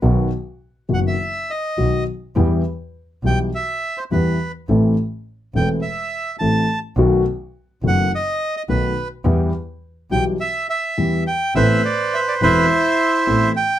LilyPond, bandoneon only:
\new Staff \with { instrumentName = "Bandoneon" } { \time 4/4 \key e \minor \tempo 4 = 104 << { r4. fis''16 e''8. dis''4 r8 | r4. g''8 e''8. c''16 b'8. r16 | r4. g''8 e''4 a''8. r16 | r4. fis''8 dis''8. dis''16 b'8. r16 |
r4. g''8 e''8 e''4 g''8 | \key a \minor e''8 d''8 e''16 d''16 c''2 g''8 | } \\ { r1 | r1 | r1 | r1 |
r1 | <b' c''>4. e'2 r8 | } >> }